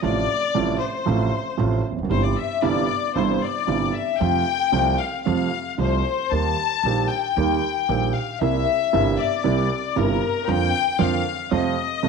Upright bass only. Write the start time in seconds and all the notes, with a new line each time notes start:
0.04 A1
0.56 A1
1.09 A1
1.59 A1
1.92 E1
1.98 F1
2.04 F#1
2.11 G1
2.63 G1
3.16 G1
3.68 G1
4.21 F2
4.73 C2
5.27 F2
5.78 C2
6.32 D#2
6.84 A#1
7.37 D#2
7.89 A#1
8.41 C2
8.94 G1
9.45 C2
9.97 G1
10.49 F2
11.00 F2
11.52 F2
12.04 C2